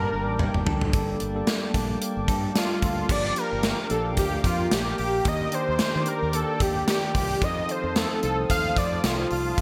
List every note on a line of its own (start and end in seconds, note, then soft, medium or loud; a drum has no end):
0.00 0.10 G2 loud
0.00 0.60 G3 medium
0.00 0.93 G3 medium
0.00 0.60 A#3 medium
0.00 0.60 D4 medium
0.00 0.42 A4 medium
0.00 0.67 A#4 loud
0.00 0.92 A#4 medium
0.00 0.93 G5 medium
0.00 0.61 A5 medium
0.00 0.90 A5 medium
0.00 0.93 D6 medium
0.12 0.27 G1 medium
0.12 1.20 D4 medium
0.27 0.48 A1 medium
0.39 1.47 A#3 medium
0.39 mid tom medium
0.54 0.64 G1 medium
0.54 mid tom medium
0.65 0.87 D2 medium
0.65 0.91 G3 medium
0.65 0.91 A#3 medium
0.65 0.91 D4 medium
0.65 1.51 A4 medium
0.65 0.92 A4 medium
0.65 floor tom loud
0.81 floor tom loud
0.93 1.14 G1 loud
0.93 1.31 G3 medium
0.93 3.09 G3 medium
0.93 1.31 A#3 medium
0.93 3.08 A#3 medium
0.93 1.31 D4 medium
0.93 1.32 A4 medium
0.93 3.08 G5 medium
0.93 3.07 A5 medium
0.93 3.08 D6 medium
0.93 kick loud
0.93 closed hi-hat medium
1.20 1.41 G1 loud
1.20 1.74 D4 medium
1.20 closed hi-hat medium
1.35 2.33 G3 medium
1.35 2.33 A#3 medium
1.35 2.33 D4 medium
1.35 2.34 A4 medium
1.47 2.01 A#3 medium
1.47 snare loud
1.47 closed hi-hat medium
1.74 1.95 A#1 medium
1.74 2.55 D4 medium
1.74 kick medium
1.74 closed hi-hat medium
2.02 3.62 A#3 medium
2.02 closed hi-hat medium
2.17 2.26 G1 medium
2.28 2.49 G2 loud
2.28 2.80 A4 medium
2.28 kick loud
2.28 closed hi-hat medium
2.54 3.05 G3 medium
2.54 3.05 A#3 medium
2.54 3.05 D4 medium
2.54 3.35 D4 medium
2.54 2.82 F4 medium
2.54 3.05 A4 medium
2.54 snare loud
2.54 closed hi-hat loud
2.82 3.03 D2 medium
2.82 3.12 F4 medium
2.82 3.09 A4 medium
2.82 kick medium
2.82 closed hi-hat medium
3.08 3.30 G1 loud
3.08 3.34 F3 medium
3.08 5.25 F3 medium
3.08 3.34 A#3 medium
3.08 3.34 D4 medium
3.08 3.35 G4 medium
3.08 4.44 G4 medium
3.08 7.38 A#4 medium
3.08 3.39 D5 loud
3.08 5.23 F5 medium
3.08 7.38 G5 medium
3.08 5.23 D6 medium
3.08 kick loud
3.08 crash medium
3.36 3.86 F3 medium
3.36 3.86 A#3 medium
3.36 3.89 D4 medium
3.36 3.86 D4 medium
3.36 3.86 G4 medium
3.36 3.90 A#4 medium
3.36 closed hi-hat medium
3.52 3.72 G1 medium
3.63 4.17 A#3 medium
3.63 snare loud
3.63 closed hi-hat medium
3.89 4.18 A#1 medium
3.89 4.90 F3 medium
3.89 4.90 A#3 medium
3.89 4.71 D4 medium
3.89 4.90 D4 medium
3.89 4.91 G4 medium
3.89 4.03 A4 medium
3.89 closed hi-hat medium
4.17 4.38 D2 medium
4.17 5.25 A#3 medium
4.17 4.43 G4 loud
4.17 kick medium
4.17 closed hi-hat medium
4.44 4.65 F2 medium
4.44 4.75 F4 medium
4.44 4.98 G4 medium
4.44 kick medium
4.44 closed hi-hat medium
4.71 4.92 A#1 medium
4.71 5.52 D4 medium
4.71 4.99 G4 medium
4.71 snare loud
4.71 closed hi-hat loud
4.98 5.19 A#1 medium
4.98 5.26 G4 medium
4.98 5.29 G4 loud
4.98 open hi-hat medium
5.24 5.46 D#2 loud
5.24 5.50 D#3 medium
5.24 5.50 A#3 medium
5.24 5.78 A#3 medium
5.24 5.50 D4 medium
5.24 5.51 G4 medium
5.24 6.59 G4 medium
5.24 7.39 D5 medium
5.24 5.56 D#5 loud
5.24 7.40 D6 medium
5.24 kick loud
5.24 closed hi-hat medium
5.52 6.02 D#3 medium
5.52 6.02 A#3 medium
5.52 6.03 D4 medium
5.52 6.05 D4 medium
5.52 6.03 G4 medium
5.52 6.10 C5 loud
5.52 closed hi-hat medium
5.68 5.77 D#2 medium
5.79 6.33 A#3 medium
5.79 muted fretless electric bass stroke soft
5.79 snare loud
5.79 closed hi-hat medium
5.95 6.04 D#3 medium
6.06 7.06 D#3 medium
6.06 7.06 A#3 medium
6.06 6.86 D4 medium
6.06 7.07 D4 medium
6.06 7.07 G4 medium
6.06 6.36 A#4 medium
6.06 closed hi-hat medium
6.22 6.42 D#2 medium
6.33 7.48 A#3 medium
6.33 6.63 A4 loud
6.33 closed hi-hat medium
6.60 6.81 D#2 medium
6.60 7.14 G4 medium
6.60 6.88 G4 medium
6.60 kick loud
6.60 closed hi-hat medium
6.87 7.48 D4 medium
6.87 7.14 G4 loud
6.87 snare loud
6.87 closed hi-hat loud
7.14 7.35 C2 medium
7.14 7.29 F4 medium
7.14 7.45 G4 medium
7.14 kick medium
7.14 open hi-hat medium
7.29 7.42 G4 medium
7.41 7.62 F2 loud
7.41 9.58 D#3 medium
7.41 7.66 F3 medium
7.41 7.66 C4 medium
7.41 7.67 D#4 medium
7.41 8.76 F4 medium
7.41 7.67 A4 medium
7.41 9.56 C5 medium
7.41 7.73 D#5 loud
7.41 9.61 F5 medium
7.41 9.61 A5 medium
7.41 9.56 D#6 medium
7.41 kick loud
7.41 closed hi-hat medium
7.68 8.18 F3 medium
7.68 8.19 C4 medium
7.68 8.21 C4 medium
7.68 8.19 D#4 medium
7.68 8.19 A4 medium
7.68 7.99 C5 medium
7.68 closed hi-hat medium
7.83 8.04 F2 loud
7.96 8.49 A3 medium
7.96 8.24 A4 medium
7.96 snare loud
7.96 closed hi-hat medium
8.22 8.43 C2 medium
8.22 9.23 F3 medium
8.22 9.03 C4 medium
8.22 9.23 C4 medium
8.22 9.23 D#4 medium
8.22 9.23 A4 medium
8.22 8.37 A4 loud
8.22 closed hi-hat medium
8.49 8.70 D#2 medium
8.49 9.61 A3 medium
8.49 8.79 F5 loud
8.49 kick medium
8.49 closed hi-hat medium
8.77 8.97 F2 medium
8.77 9.31 F4 medium
8.77 9.07 D5 loud
8.77 kick medium
8.77 closed hi-hat medium
9.04 9.24 C2 medium
9.04 9.61 C4 medium
9.04 9.32 F4 medium
9.04 snare loud
9.04 closed hi-hat medium
9.31 9.51 C2 medium
9.31 9.59 F4 medium
9.31 9.61 F4 loud
9.31 open hi-hat medium
9.57 9.61 F2 medium
9.57 9.61 F3 medium
9.57 9.61 A#3 medium
9.57 9.61 D4 medium
9.57 9.61 D5 medium
9.57 9.61 D6 medium
9.57 kick loud
9.57 closed hi-hat medium